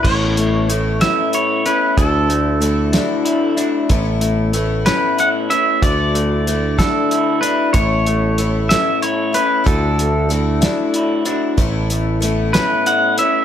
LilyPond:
<<
  \new Staff \with { instrumentName = "Pedal steel guitar" } { \time 6/8 \key a \major \tempo 4. = 62 cis''4. e''8 cis''8 b'8 | a'2~ a'8 r8 | r4. b'8 fis''8 e''8 | d''4. a'4 b'8 |
cis''4. e''8 cis''8 b'8 | a'2~ a'8 r8 | r4. b'8 fis''8 e''8 | }
  \new Staff \with { instrumentName = "Twelve-string acoustic guitar" } { \time 6/8 \key a \major <a, a b cis' e'>4 <a b cis' e'>8 <a, a b cis' e'>4 <b cis' e'>8 | <d a d' e' fis'>4 <a d' e' fis'>8 <d a d' e' fis'>4 <d' e' fis'>8 | <a, a b cis' e'>4 <a b cis' e'>8 <a, a b cis' e'>4 <b cis' e'>8 | <d a d' e' fis'>4 <a d' e' fis'>8 <d a d' e' fis'>4 <d' e' fis'>8 |
<a, a b cis' e'>4 <a b cis' e'>8 <a, a b cis' e'>4 <b cis' e'>8 | <d a d' e' fis'>4 <a d' e' fis'>8 <d a d' e' fis'>4 <d' e' fis'>8 | <a, a b cis' e'>4 <a b cis' e'>8 <a, a b cis' e'>4 <b cis' e'>8 | }
  \new Staff \with { instrumentName = "Clean electric guitar" } { \time 6/8 \key a \major a,8 a8 a8 cis'8 e'8 cis'8 | d8 a8 a8 d'8 e'8 d'8 | a,8 a8 a8 cis'8 e'8 cis'8 | d8 a8 a8 d'8 e'8 d'8 |
a,8 a8 a8 cis'8 e'8 cis'8 | d8 a8 a8 d'8 e'8 d'8 | a,8 a8 a8 cis'8 e'8 cis'8 | }
  \new Staff \with { instrumentName = "Picked electric bass" } { \clef bass \time 6/8 \key a \major a,,2 r4 | d,2 r4 | a,,2 r4 | d,2 r4 |
a,,2 r4 | d,2 r4 | a,,2 r4 | }
  \new DrumStaff \with { instrumentName = "Drums" } \drummode { \time 6/8 <cymc bd>8 hh8 hh8 <hh sn>8 hh8 hh8 | <hh bd>8 hh8 hh8 <hh sn>8 hh8 hh8 | <hh bd>8 hh8 hh8 <hh sn>8 hh8 hh8 | <hh bd>8 hh8 hh8 <hh bd sn>8 hh8 hh8 |
<hh bd>8 hh8 hh8 <hh sn>8 hh8 hh8 | <hh bd>8 hh8 hh8 <hh sn>8 hh8 hh8 | <hh bd>8 hh8 hh8 <hh sn>8 hh8 hh8 | }
>>